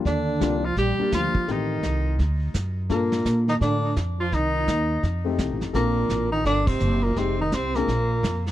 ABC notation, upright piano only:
X:1
M:4/4
L:1/8
Q:"Swing" 1/4=169
K:Bb
V:1 name="Upright piano"
z2 [G,B,DF] z2 [G,B,DG]3 | [A,CEG]4 z4 | [B,DFA]4- [B,DFA] z3 | z4 z [A,CEG]3 |
[CDFA]4- [CDFA] z3 | [_A,CEG] z2 [A,CD_A] z4 |]